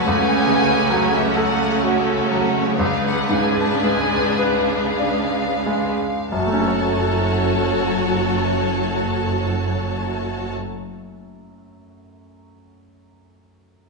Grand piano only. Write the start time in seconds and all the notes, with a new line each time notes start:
0.07 C#2
0.47 C#3
0.90 F#3
1.37 A4
1.83 F#4
2.31 F#3
2.79 C#2
3.29 G#2
3.83 G#3
4.39 B4
5.00 D4
5.66 G#3
6.32 F#2
6.39 F#3
6.47 A3
6.53 C#4
6.60 A4
6.68 C#5